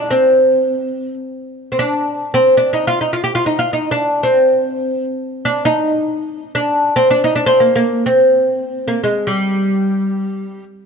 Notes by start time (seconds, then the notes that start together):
Already playing: D4
0.11 C4
1.72 C4
1.79 D4
2.34 C4
2.57 D4
2.73 D#4
2.87 F4
3.01 D#4
3.13 F4
3.24 G4
3.35 F4
3.46 D#4
3.59 F4
3.73 D#4
3.91 D4
4.23 C4
5.45 D4
5.65 D#4
6.55 D4
6.96 C4
7.11 D4
7.24 D#4
7.35 D4
7.46 C4
7.60 A#3
7.76 A#3
8.06 C4
8.88 A#3
9.04 G#3
9.27 G3